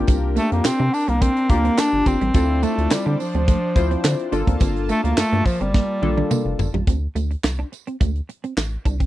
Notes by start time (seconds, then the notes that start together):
Already playing: A#3 D4 F4 G4 A#4 G5
0.07 C2 C4, kick, closed hi-hat, tambourine
0.36 A3 A#3, closed hi-hat, tambourine
0.51 F2 A#3, muted clean electric guitar stroke, closed hi-hat
0.65 C3 C4, snare, clap, closed hi-hat, tambourine
0.79 C3 D4
0.93 D4, muted clean electric guitar stroke, open hi-hat, tambourine
1.08 C2 A#3 C4, closed hi-hat
1.21 A#3 C4, kick, closed hi-hat
1.36 closed hi-hat
1.49 D2 A#3 D4 F4 G4, muted clean electric guitar stroke, kick, closed hi-hat, tambourine
1.64 C4, closed hi-hat
1.78 A#3 D4, snare, clap, closed hi-hat, tambourine
1.93 G1, muted clean electric guitar stroke
2.06 G1 C4, kick, closed hi-hat, tambourine
2.21 A1 G3, closed hi-hat
2.34 D2 C4 D4 E4 F4 A4 C5 D5, kick, closed hi-hat, tambourine
2.63 A3, closed hi-hat, tambourine
2.78 D2, muted clean electric guitar stroke, closed hi-hat
2.91 D3 G3, snare, clap, closed hi-hat, tambourine
3.06 D3 D4
3.20 F3, muted clean electric guitar stroke, open hi-hat, tambourine
3.34 D2 C4, closed hi-hat
3.48 A3, kick, closed hi-hat, tambourine
3.75 D2 C4 E4 F4 C5, muted clean electric guitar stroke, kick, closed hi-hat, tambourine
3.91 C4, closed hi-hat
4.04 D3, muted clean electric guitar stroke, snare, clap, closed hi-hat, tambourine
4.19 closed hi-hat
4.32 G1 A#3 D4 F4 A4 A5, closed hi-hat, tambourine
4.47 D2 C4, kick, closed hi-hat
4.60 G1 C4, kick, closed hi-hat, tambourine
4.76 closed hi-hat
4.89 A3 A#3, closed hi-hat, tambourine
5.04 D2 A#3, muted clean electric guitar stroke, closed hi-hat
5.17 G2 A3, snare, clap, closed hi-hat, tambourine
5.32 G2 A#3, closed hi-hat
5.46 F3, muted clean electric guitar stroke, kick, open hi-hat, tambourine
5.61 G1 G3 C4, closed hi-hat
5.74 A#3, kick, snare, tambourine
6.02 A#1 A#3 D4 F4 A4, muted clean electric guitar stroke, high tom
6.17 D4, high tom
6.31 A#3, mid tom, tambourine
6.45 F1, muted clean electric guitar stroke
6.59 G1, floor tom, tambourine
6.74 A1 G3, floor tom
6.87 D2 C4, kick, closed hi-hat, tambourine
7.15 D2 A3, closed hi-hat, tambourine
7.31 muted clean electric guitar stroke, closed hi-hat
7.44 C2, snare, clap, tambourine
7.59 D4
7.72 muted clean electric guitar stroke, closed hi-hat, tambourine
7.87 C4, closed hi-hat
8.00 D2 A3, kick, closed hi-hat, tambourine
8.15 closed hi-hat
8.29 muted clean electric guitar stroke, closed hi-hat
8.44 C4, closed hi-hat
8.57 A1, muted clean electric guitar stroke, snare, clap, tambourine
8.85 C2 D4, kick, closed hi-hat, tambourine
9.00 C4, kick, closed hi-hat